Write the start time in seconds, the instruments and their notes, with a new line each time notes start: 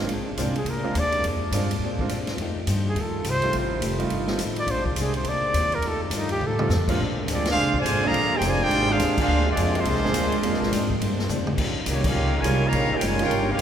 0.07 upright bass A#1, steel-string acoustic guitar A#2, trombone section C3 G#3 A#3 D4, ride
0.11 steel-string acoustic guitar G#3 C4 D4
0.37 upright bass C2, steel-string acoustic guitar A#2 G#3 C4 D4, grand piano G#3 A#3 C4 D4 F4, hi-hat pedal, ride
0.56 trumpet G#4, ride
0.65 upright bass D2, steel-string acoustic guitar A#2 G#3 C4, ride
0.69 steel-string acoustic guitar D4, trumpet A#4
0.84 grand piano G#3 A#3 C4 D4 F4
0.95 upright bass D#2, steel-string acoustic guitar A#2 G#3 C4 D4, hi-hat pedal, ride
0.99 trumpet D5
1.12 ride
1.24 upright bass F2, steel-string acoustic guitar A#2 G#3 C4 D4, ride
1.51 upright bass G2, steel-string acoustic guitar A#2 G#3 C4 D4, grand piano G#3 A#3 C4 D4 F4, hi-hat pedal, ride
1.71 ride
1.79 upright bass G#2, steel-string acoustic guitar A#2
1.84 steel-string acoustic guitar G#3 C4 D4
1.99 grand piano G#3 A#3 C4 D4 F4, kick
2.09 upright bass A#2, steel-string acoustic guitar A#2 G#3 C4 D4, hi-hat pedal, ride
2.27 snare, ride
2.37 upright bass F2, trombone section D#3 G3 A3 F4, steel-string acoustic guitar F3 A3, ride
2.42 steel-string acoustic guitar D#4 G4
2.67 upright bass G2, steel-string acoustic guitar F3 A3 D#4 G4, hi-hat pedal, ride
2.89 trumpet G#4
2.95 upright bass D#2, steel-string acoustic guitar F3 A3 D#4 G4, ride
3.01 trumpet A4
3.13 muted upright bass stroke
3.24 upright bass C2, steel-string acoustic guitar F3 A3 D#4 G4, hi-hat pedal, ride
3.30 trumpet C5
3.42 grand piano G3 A3 C4 D#4 F4, ride
3.53 upright bass A1, steel-string acoustic guitar F3 A3 D#4, ride
3.57 steel-string acoustic guitar G4
3.80 upright bass F1, steel-string acoustic guitar F3 A3 D#4 G4, hi-hat pedal, ride
3.99 grand piano G3 A3 C4 D#4 F4, ride
4.10 upright bass G1, steel-string acoustic guitar F3 A3 D#4, ride
4.14 steel-string acoustic guitar G4
4.28 grand piano G3 A3 C4 D#4 F4, snare
4.38 upright bass A1, steel-string acoustic guitar F3 A3 D#4, hi-hat pedal, ride
4.42 steel-string acoustic guitar G4
4.56 trumpet D5, ride
4.67 upright bass A#1, steel-string acoustic guitar A#2 G#3 C4, trombone section C3 G#3 A#3 D4, ride
4.71 steel-string acoustic guitar D4, trumpet C5
4.86 trumpet F4, kick
4.96 upright bass C2, steel-string acoustic guitar A#2 G#3 C4 D4, hi-hat pedal, ride
5.00 trumpet G#4
5.14 trumpet C5, ride
5.24 upright bass D2, steel-string acoustic guitar A#2 G#3 C4 D4, ride
5.29 trumpet D5
5.53 upright bass D#2, steel-string acoustic guitar A#2 G#3 C4 D4, hi-hat pedal, ride
5.72 trumpet A#4, ride
5.82 upright bass F2, trombone section D#3 G3 A3 F4, steel-string acoustic guitar F3 A3, ride
5.86 steel-string acoustic guitar D#4 G4, trumpet A4
6.04 trumpet C4
6.10 upright bass G2, steel-string acoustic guitar F3 A3 D#4, hi-hat pedal, ride
6.15 trumpet D#4, steel-string acoustic guitar G4
6.29 trumpet G4, ride
6.41 upright bass A2, steel-string acoustic guitar F3 A3 D#4 G4, mid tom
6.47 trumpet A4
6.59 grand piano G3 A3 C4 D#4 F4, mid tom
6.69 upright bass F2, steel-string acoustic guitar F3 A3 D#4 G4, snare, hi-hat pedal
6.88 grand piano G#3 A#3 C4 D4 F4, kick, crash
6.98 upright bass A#1, steel-string acoustic guitar A#2 G#3 C4 D4, trombone section C3 G#3 A#3 D4
7.27 upright bass D2, steel-string acoustic guitar A#2 G#3 C4 D4, trombone section F3 G#3 D4, hi-hat pedal, ride
7.31 trumpet section C4 F4 G#4 D5
7.45 trombone section G#3 D4 F4, snare, ride
7.50 trumpet section D4 G#4 C5 F5
7.56 upright bass C2, steel-string acoustic guitar A#2 G#3 C4 D4
7.74 trombone section D3 F3 G#3, kick
7.78 trumpet section F4 C5 D5 G#5
7.84 upright bass G#1, steel-string acoustic guitar A#2 G#3 C4 D4, hi-hat pedal, ride
8.03 trombone section D3 F3 A#3, grand piano G#3 A#3 C4 D4 F4, trumpet section G#4 D5 F5 A#5
8.12 upright bass A#1, steel-string acoustic guitar A#2 G#3 C4 D4, ride
8.34 trumpet section D#4 G#4 C5 G5, trombone section G4
8.41 upright bass F1, steel-string acoustic guitar A#2 G#3 C4 D4, trombone section D3 F3 G#3, hi-hat pedal, ride
8.46 trumpet section F4 C5 D5 G#5
8.60 trombone section G#3 D4 G4, trumpet section F4 C5 D5 G5
8.70 upright bass G#1, steel-string acoustic guitar A#2 G#3 C4 D4, ride
8.89 trombone section G#3 D4 F4, trumpet section D4 G#4 C5 F5
9.00 upright bass D#2, steel-string acoustic guitar A#2 G#3 C4 D4, snare, hi-hat pedal, ride
9.17 trombone section G#3 D4 F4, trumpet section D4 G#4 C5 F5, muted upright bass stroke, kick, crash
9.28 upright bass D2, steel-string acoustic guitar A#2 G#3 C4
9.32 steel-string acoustic guitar D4
9.46 trombone section F3 G#3 D4, trumpet section C4 F4
9.50 trumpet section G#4 D5
9.57 upright bass F2, steel-string acoustic guitar A#2 G#3 C4 D4, hi-hat pedal, ride
9.74 trombone section F3 G#3 C4, grand piano G#3 A#3 C4 D4 F4, ride
9.79 trumpet section G#3 D4 F4 C5
9.85 upright bass C2, steel-string acoustic guitar A#2 G#3 C4 D4, ride
9.96 upright bass A#1, snare
10.04 upright bass G#1, grand piano G#3 A#3 C4 D4 G#4, snare
10.14 upright bass D2, steel-string acoustic guitar A#2, hi-hat pedal, ride
10.18 steel-string acoustic guitar G#3 C4 D4
10.32 ride
10.42 upright bass F2, steel-string acoustic guitar A#2 G#3 C4, grand piano G#3 A#3 C4 D4 F4, ride
10.47 steel-string acoustic guitar D4
10.52 upright bass D2, snare
10.62 upright bass A#1, snare
10.71 upright bass G#2, steel-string acoustic guitar A#2 G#3 C4 D4, hi-hat pedal, ride
10.90 kick
11.00 upright bass G2, steel-string acoustic guitar A#2 G#3 C4 D4, ride
11.19 snare
11.29 upright bass F2, steel-string acoustic guitar A#2 G#3 C4 D4, hi-hat pedal, mid tom
11.47 mid tom
11.56 upright bass D#2, trombone section C#3 F3 G3 D#4, steel-string acoustic guitar D#3 G3 C#4 F4, kick, crash
11.75 muted upright bass stroke
11.86 upright bass C2, steel-string acoustic guitar D#3 G3 C#4 F4, trombone section G3 A#3 C#4, hi-hat pedal, ride
11.90 trumpet section A#3 F4 G4 C#5
12.04 trombone section A#3 C#4 F4, trumpet section C#4 G4 A#4 F5, kick, crash
12.15 upright bass C#2, steel-string acoustic guitar D#3 G3 C#4 F4
12.34 trombone section A#2 C#3 G#3, trumpet section F4 A#4 C#5 G#5
12.42 upright bass C2, steel-string acoustic guitar D#3 G3 C#4 F4, grand piano G3 A#3 C#4 D#4, hi-hat pedal, ride
12.47 grand piano F4
12.62 trombone section C#3 G3 A#3
12.66 trumpet section G4 C#5 F5 A#5
12.72 upright bass A#1, steel-string acoustic guitar D#3 G3 C#4 F4, ride
12.91 trombone section A#3 C#4 G4, muted upright bass stroke
12.95 trumpet section F4 A#4 C#5 G5
13.01 upright bass F#1, steel-string acoustic guitar D#3 G3 C#4 F4, trombone section G#3, hi-hat pedal, ride
13.06 trumpet section F4 A#4 C#5 G#5
13.19 grand piano G3 A#3 C#4 D#4 F4, trombone section A#3, trumpet section F4 A#4 C#5 G5, ride
13.23 trombone section C#4 G4
13.30 upright bass G1, steel-string acoustic guitar D#3 G3 C#4, ride
13.34 steel-string acoustic guitar F4
13.51 trombone section A#3 C#4 F4, trumpet section C#4 G4 A#4 F5
13.58 upright bass G#1